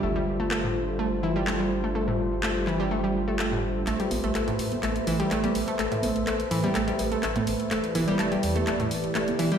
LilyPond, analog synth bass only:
\new Staff \with { instrumentName = "Analog synth bass" } { \clef bass \time 4/4 \key a \minor \tempo 4 = 125 g,,1~ | g,,1 | a,,16 r16 a,,16 a,,16 a,,16 r16 a,16 r16 a,,16 r16 a,,16 r16 a,,16 r16 a,,16 r16 | a,,16 r16 a,,16 a,,16 a,,16 r16 a,16 r16 a,,16 r16 a,,16 r16 a,,16 r16 a,,16 r16 |
e,,16 r16 e,,16 e,,16 e,,16 r16 e,16 r16 e,,16 r16 e,,16 r16 e,,16 r16 e,,16 r16 | }